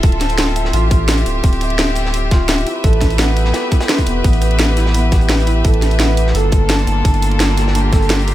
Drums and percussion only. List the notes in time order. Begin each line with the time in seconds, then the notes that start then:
0.03 kick, closed hi-hat
0.12 closed hi-hat
0.21 snare, closed hi-hat, cabasa
0.29 closed hi-hat
0.38 snare, closed hi-hat, cabasa
0.56 closed hi-hat, cabasa
0.65 snare
0.73 closed hi-hat
0.91 kick, closed hi-hat, cabasa
1.08 snare, closed hi-hat
1.17 closed hi-hat
1.26 closed hi-hat, cabasa
1.44 kick, closed hi-hat
1.53 closed hi-hat
1.61 closed hi-hat, cabasa
1.70 closed hi-hat
1.78 snare, closed hi-hat, cabasa
1.95 snare, closed hi-hat, cabasa
2.06 snare
2.14 closed hi-hat
2.31 kick, snare, closed hi-hat, cabasa
2.49 snare, closed hi-hat, open hi-hat
2.58 closed hi-hat
2.67 closed hi-hat, cabasa
2.84 kick, closed hi-hat
2.93 closed hi-hat
3.01 kick, snare, closed hi-hat, cabasa
3.10 closed hi-hat
3.19 snare, closed hi-hat, cabasa
3.37 closed hi-hat, cabasa
3.45 snare
3.54 snare, closed hi-hat
3.71 kick, snare, closed hi-hat, cabasa
3.81 snare, closed hi-hat
3.89 snare, closed hi-hat
3.98 kick, snare, closed hi-hat
4.06 closed hi-hat, cabasa
4.24 kick, closed hi-hat
4.33 closed hi-hat
4.41 closed hi-hat, cabasa
4.51 closed hi-hat
4.59 snare, closed hi-hat
4.77 snare, closed hi-hat, cabasa
4.86 snare
4.94 closed hi-hat
5.12 kick, snare, closed hi-hat, cabasa
5.21 closed hi-hat
5.29 snare, closed hi-hat, open hi-hat
5.39 closed hi-hat
5.47 closed hi-hat, cabasa
5.64 kick, closed hi-hat
5.74 closed hi-hat
5.82 snare, closed hi-hat, cabasa
5.91 closed hi-hat
6.00 snare, closed hi-hat, cabasa
6.17 closed hi-hat, cabasa
6.27 snare
6.35 closed hi-hat
6.52 kick, closed hi-hat, cabasa
6.70 snare, closed hi-hat
6.79 closed hi-hat
6.87 closed hi-hat, cabasa
7.05 kick, closed hi-hat
7.14 closed hi-hat
7.22 closed hi-hat, cabasa
7.31 closed hi-hat
7.40 snare, closed hi-hat, cabasa
7.58 snare, closed hi-hat, cabasa
7.67 snare
7.75 closed hi-hat
7.93 kick, snare, closed hi-hat, cabasa
8.02 closed hi-hat
8.10 snare, closed hi-hat, open hi-hat
8.20 closed hi-hat
8.28 closed hi-hat, cabasa